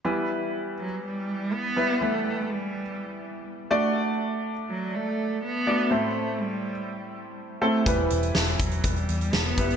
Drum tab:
HH |----------------|----------------|----------------|----------------|
SD |----------------|----------------|----------------|----------------|
BD |----------------|----------------|----------------|----------------|

HH |x-xx-xxxxxxx--xx|
SD |----o-------o---|
BD |o-----o-o-----o-|